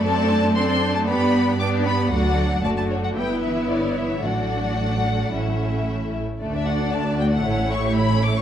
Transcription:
<<
  \new Staff \with { instrumentName = "Violin section" } { \time 4/4 \key d \major \tempo 4 = 115 a''4 c'''16 c'''8 a''16 b''4 d'''8 b''8 | fis''4 a''16 a''8 fis''16 g''8 e''8 d''8 e''8 | fis''2. r4 | r16 e''16 fis''8 a''8 g''16 fis''8. cis'''8 b''8 d'''16 cis'''16 | }
  \new Staff \with { instrumentName = "Violin section" } { \time 4/4 \key d \major << { d''4 d''4 d''4 d''4 | d''4 d''8 cis''8 b'4 cis''4 | d''2 e''4. r8 | d''2 cis''2 | } \\ { a'4 a'4 g'4 g'4 | fis'4 fis'4 e'2 | fis'2 e'4. r8 | a16 d'16 fis'16 d'16 a16 d'16 fis'16 d'16 a16 cis'16 e'16 g'16 e'16 cis'16 a16 cis'16 | } >> }
  \new Staff \with { instrumentName = "Viola section" } { \time 4/4 \key d \major << { d'4 d'4 d'4 d'4 | d'4 d'4 e'2 | d'2 cis'4. r8 | d'2 e'2 | } \\ { c'4 c'4 b4 b4 | a4 a4 b2 | a2 a4. r8 | a1 | } >> }
  \new Staff \with { instrumentName = "Cello section" } { \clef bass \time 4/4 \key d \major a4 c'16 c'8 a16 b4 d'8 b8 | fis4 a16 a8 fis16 g8 e8 d8 e8 | fis2. r4 | d,2 a,2 | }
  \new Staff \with { instrumentName = "Double bass section" } { \clef bass \time 4/4 \key d \major fis,2 g,2 | d,4 fis,,4 g,,2 | a,,2 a,,4. r8 | d,2 a,,2 | }
>>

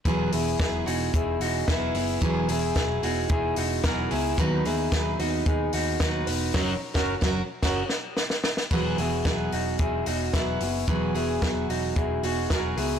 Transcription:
<<
  \new Staff \with { instrumentName = "Clean electric guitar" } { \time 4/4 \key e \lydian \tempo 4 = 111 <gis' b'>8 <e' gis'>4 <dis' fis'>8 <e' gis'>8 <dis' fis'>8 <b e'>4 | <gis' b'>8 <e' gis'>4 <dis' fis'>8 <e' gis'>8 <dis' fis'>8 <fis' ais'>8 <e' gis'>8 | <fis' b'>8 <e' gis'>4 <dis' fis'>8 <dis' gis'>8 <dis' fis'>8 <dis' fis'>4 | <ais' cis''>8 r16 <fis' ais'>8 r2 r8. |
<gis' b'>8 <e' gis'>4 <dis' fis'>8 <e' gis'>8 <dis' fis'>8 <b e'>4 | <gis' b'>8 <e' gis'>4 <dis' fis'>8 <e' gis'>8 <dis' fis'>8 <fis' ais'>8 <e' gis'>8 | }
  \new Staff \with { instrumentName = "Steel-string acoustic guitar" } { \time 4/4 \key e \lydian <e fis b e' gis'>8 <b e' gis'>8 <fis b e' gis'>8 <b e' gis'>4. <fis b e' gis'>8 <b e' gis'>8 | <e fis b e' gis'>8 <b e' gis'>8 <fis b e' gis'>8 <b e' gis'>4. <fis b e' gis'>8 <b e' gis'>8 | <dis fis b dis' b'>8 <b dis' b'>8 <fis b dis' b'>8 <b dis' b'>4. <fis b dis' b'>8 <b dis' b'>8 | <fis cis' fis' ais'>8 r16 <cis' fis' ais'>8 <fis cis' fis' ais'>8 r16 <cis' fis' ais'>8 r4. |
<e fis b fis' gis'>8 <b fis' gis'>8 <fis b fis' gis'>4. <b fis' gis'>8 <fis b fis' gis'>8 <b fis' gis'>8 | <e fis b fis' gis'>8 <b fis' gis'>8 <fis b fis' gis'>4. <b fis' gis'>8 <fis b fis' gis'>8 <b fis' gis'>8 | }
  \new Staff \with { instrumentName = "Picked electric bass" } { \clef bass \time 4/4 \key e \lydian e,,8 e,,8 e,,8 e,,8 e,,8 e,,8 e,,8 fis,,8 | e,,8 e,,8 e,,8 e,,8 e,,8 e,,8 e,,8 cis,8 | dis,8 dis,8 dis,8 dis,8 dis,8 dis,8 dis,8 e,,8 | fis,,8 r16 fis,,8 fis,,8 r16 fis,,8 r4. |
e,,8 e,,8 e,,8 e,,8 e,,8 e,,8 e,,8 fis,,8 | e,,8 e,,8 e,,8 e,,8 e,,8 e,,8 e,,8 cis,8 | }
  \new DrumStaff \with { instrumentName = "Drums" } \drummode { \time 4/4 <hh bd>8 hho8 <hh bd sn>8 hho8 <hh bd>8 hho8 <hh bd sn>8 hho8 | <hh bd>8 hho8 <hh bd sn>8 hho8 <hh bd>8 hho8 <hh bd sn>8 hho8 | <hh bd>8 hho8 <hh bd sn>8 hho8 <hh bd>8 hho8 <hh bd sn>8 hho8 | <cymc bd sn>8. <bd sn>16 r16 <bd sn>8. <cymc bd sn>8 sn8 sn16 sn16 sn16 sn16 |
<cymc bd>8 hho8 <hh bd sn>8 hho8 <hh bd>8 hho8 <hh bd sn>8 hho8 | <hh bd>8 hho8 <hh bd sn>8 hho8 <hh bd>8 hho8 <hh bd sn>8 hho8 | }
>>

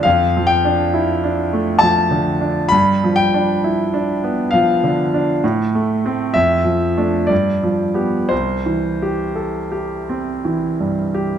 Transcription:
<<
  \new Staff \with { instrumentName = "Grand piano" } { \time 3/4 \key c \major \tempo 4 = 65 f''8 g''4. a''4 | b''8 g''4. f''4 | r4 e''4 d''4 | c''2~ c''8 r8 | }
  \new Staff \with { instrumentName = "Grand piano" } { \time 3/4 \key c \major \tuplet 3/2 { f,8 f8 d'8 e'8 d'8 a8 f8 d8 d'8 } | \tuplet 3/2 { g,8 f8 d'8 e'8 d'8 b8 f8 d8 d'8 } | \tuplet 3/2 { a,8 a8 <a c'>8 f,8 f8 <a d'>8 g,8 f8 <b g'>8 } | \tuplet 3/2 { c,8 e8 g'8 a'8 g'8 c'8 e8 g,8 g'8 } | }
>>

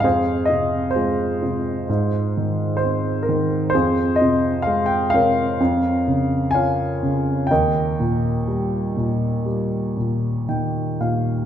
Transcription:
<<
  \new Staff \with { instrumentName = "Grand piano" } { \time 4/4 \key ees \mixolydian \tempo 4 = 64 << { f''8 ees''8 c''2 c''8 bes'8 | c''8 ees''8 f''16 g''16 f''4. aes''4 | g''2. g''8 f''8 | } \\ { <aes' c''>4 <f' aes'>2 r4 | <f' aes'>4. <bes' des''>4. <des'' f''>4 | <bes' ees''>2. r4 | } >> }
  \new Staff \with { instrumentName = "Grand piano" } { \clef bass \time 4/4 \key ees \mixolydian f,8 c8 aes8 c8 aes,8 ees8 c'8 ees8 | f,8 c8 aes8 c8 f,8 des8 f'8 des8 | ees,8 bes,8 g8 bes,8 g8 bes,8 ees8 bes,8 | }
>>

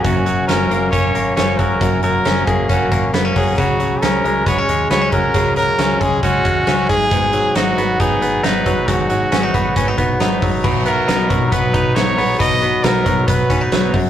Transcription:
<<
  \new Staff \with { instrumentName = "Trumpet" } { \time 4/4 \key b \lydian \tempo 4 = 136 fis'4 ais'4 cis''4 cis''8 ais'8~ | ais'8 ais'4 gis'8 fis'4 r8 gis'8 | fis'4 ais'4 cis''4 cis''8 ais'8~ | ais'8 ais'4 gis'8 fis'4. gis'8~ |
gis'4 fis'4 gis'4 b'4 | fis'2.~ fis'8 r8 | r8 ais'4. b'4 cis''4 | dis''4 ais'4 b'4. r8 | }
  \new Staff \with { instrumentName = "Clean electric guitar" } { \time 4/4 \key b \lydian <fis, fis ais cis'>8 fis8 cis'8 ais8 cis'8 ais8 cis'8 fis8 | fis,8 fis8 cis'8 ais8 cis'8 ais8 b16 cis'16 fis8 | cis8 fis8 cis'8 gis8 b16 cis'16 gis8 b16 cis'16 fis8 | cis8 fis8 cis'8 gis8 cis'8 gis8 cis'8 gis,8 |
gis,8 fis8 dis'8 b8 dis'8 b8 dis'8 fis8 | gis,8 fis8 cis'16 dis'16 b8 cis'16 dis'16 b8 dis'8 fis8 | b,8 b8 dis'8 fis8 b8 dis'8 fis8 b8 | b,8 b8 dis'8 fis8 b8 cis'16 dis'16 fis8 fis,8 | }
  \new Staff \with { instrumentName = "Steel-string acoustic guitar" } { \clef bass \time 4/4 \key b \lydian <fis, cis fis ais cis'>8 <fis ais cis'>8 <cis fis ais cis'>8 <fis ais cis'>8 <fis, cis fis ais cis'>8 <fis ais cis'>8 <cis fis ais cis'>8 <fis ais cis'>8 | <fis, cis fis ais cis'>8 <fis ais cis'>8 <cis fis ais cis'>8 <fis ais cis'>8 <fis, cis fis ais cis'>8 <fis ais cis'>8 <cis fis ais cis'>8 <fis ais cis'>8 | <cis fis gis cis'>8 <fis gis cis'>8 <cis fis gis cis'>8 <fis gis cis'>8 <cis fis gis cis'>8 <fis gis>8 <cis fis gis cis'>8 <fis gis cis'>8 | <cis fis gis cis'>8 <fis gis cis'>8 <cis fis gis cis'>8 <fis gis cis'>8 <cis fis gis cis'>8 <fis gis cis'>8 <cis fis gis cis'>8 <fis b dis'>8 |
<gis, dis fis b dis'>8 <fis b dis'>8 <dis fis b dis'>8 <fis b dis'>8 <gis, dis fis b dis'>8 <fis b dis'>8 <dis fis b dis'>8 <fis b dis'>8 | <gis, dis fis b dis'>8 <fis b dis'>8 <dis fis b dis'>8 <fis b dis'>8 <gis, dis fis b dis'>8 <fis b dis'>8 <dis fis b dis'>8 <fis b dis'>8 | <b, fis b dis'>8 <fis b dis'>8 <b, fis b dis'>8 <fis b dis'>8 <b, fis b dis'>8 <fis b dis'>8 <b, fis b dis'>8 <fis b dis'>8 | <b, fis b dis'>8 <fis b dis'>8 <b, fis b dis'>8 <fis b dis'>8 <b, fis b dis'>8 <fis b dis'>8 <b, fis b dis'>8 <fis ais cis'>8 | }
  \new Staff \with { instrumentName = "Fingered electric bass" } { \clef bass \time 4/4 \key b \lydian fis,,4 fis,,8 fis,,8 fis,,8 gis,,8 fis,,8 fis,,8 | fis,,4 fis,,8 fis,,8 fis,,8 gis,,8 fis,,8 fis,,8 | cis,4 cis,8 cis,8 cis,8 dis,8 cis,8 cis,8 | cis,4 cis,8 cis,8 cis,8 dis,8 cis,8 gis,,8~ |
gis,,4 gis,,8 gis,,8 gis,,8 gis,,8 gis,,8 gis,,8 | gis,,4 gis,,8 gis,,8 gis,,8 ais,,8 gis,,8 gis,,8 | b,,4 b,,8 b,8 b,,8 b,8 b,,8 ais,,8 | b,,4 b,,8 b,8 b,,8 b,8 b,,8 fis,,8 | }
  \new DrumStaff \with { instrumentName = "Drums" } \drummode { \time 4/4 <hh bd>8 hh8 <hh sn>8 hh8 <hh bd>8 hh8 <hh sn>8 <hh bd>8 | <hh bd>8 hh8 <hh sn>8 <hh bd>8 <hh bd>8 <hh bd>8 <hh sn>8 <hho bd>8 | <hh bd>8 hh8 <hh sn>8 hh8 <hh bd>8 hh8 <hh sn>8 <hh bd>8 | <hh bd>8 hh8 <hh sn>8 <hh bd>8 <hh bd>8 <hh bd>8 <hh sn>8 <hh bd>8 |
<hh bd>8 hh8 <hh sn>8 hh8 <hh bd>8 hh8 <hh sn>8 <hh bd>8 | <hh bd>8 hh8 <hh sn>8 <hh bd>8 <hh bd>8 <hh bd>8 <hh sn>8 <hho bd>8 | <cymc bd>8 hh8 <hh sn>8 <hh bd>8 <hh bd>8 <hh bd>8 <hh sn>8 hho8 | <hh bd>8 hh8 <hh sn>8 <hh bd>8 <hh bd>8 <hh bd>8 <hh sn>8 <hho bd>8 | }
>>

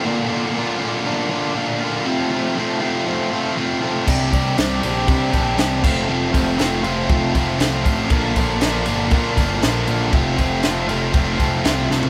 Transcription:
<<
  \new Staff \with { instrumentName = "Overdriven electric guitar" } { \time 4/4 \key f \major \tempo 4 = 119 <bes, d bes d' f'>8 <bes d' f'>8 <d bes d' f'>8 <bes, d bes d' f'>8 <d bes d' f'>8 <bes d' f'>8 <bes, d bes d' f'>8 <bes d' f'>8 | <f, c f a c' f'>8 <f a c' f'>8 <f a c' f'>8 <f, c f a c' f'>8 <f a c' f'>8 <f a c' f'>8 <f, c f a c' f'>8 <f a c' f'>8 | <c g c' d' g'>8 <c' d' g'>8 <g c' d' g'>8 <c g c' d' g'>8 <g c' d' g'>8 <c' d' g'>8 <c g c' d' g'>8 <f, c f a c' f'>8 | <f, c f a c' f'>8 <f a c' f'>8 <f a c' f'>8 <f, c f a c' f'>8 <f a c' f'>8 <f a c' f'>8 <f, c f a c' f'>8 <f a c' f'>8 |
<bes, d bes d' f'>8 <bes d' f'>8 <d bes d' f'>8 <bes, d bes d' f'>8 <d bes d' f'>8 <bes d' f'>8 <bes, d bes d' f'>8 <bes d' f'>8 | <f, c f a c' f'>8 <f a c' f'>8 <f a c' f'>8 <f, c f a c' f'>8 <f a c' f'>8 <f a c' f'>8 <f, c f a c' f'>8 <f a c' f'>8 | }
  \new Staff \with { instrumentName = "Picked electric bass" } { \clef bass \time 4/4 \key f \major r1 | r1 | c,8 c,8 c,8 bes,,8 c8 bes,,8 c,8 f,,8 | f,,8 f,,8 f,,8 f,,8 f,,8 f,,8 c,8 a,,8 |
bes,,8 bes,,8 bes,,8 g,,8 bes,8 g,,8 bes,,8 bes,,8 | f,,8 f,,8 f,,8 f,,8 f,,8 f,,8 c,8 c,8 | }
  \new DrumStaff \with { instrumentName = "Drums" } \drummode { \time 4/4 r4 r4 r4 r4 | r4 r4 r4 r4 | <cymc bd>8 <bd cymr>8 <cymr sn>8 cymr8 <bd cymr>8 <bd cymr>8 <cymr sn>8 <cymc bd>8 | r8 <bd cymr>8 <cymr sn>8 cymr8 <bd cymr>8 <bd cymr>8 <cymr sn>8 <bd cymr>8 |
<bd cymr>8 <bd cymr>8 <cymr sn>8 cymr8 <bd cymr>8 <bd cymr>8 <cymr sn>8 cymr8 | <bd cymr>8 <bd cymr>8 <cymr sn>8 cymr8 <bd cymr>8 <bd cymr>8 <cymr sn>8 sn16 tomfh16 | }
>>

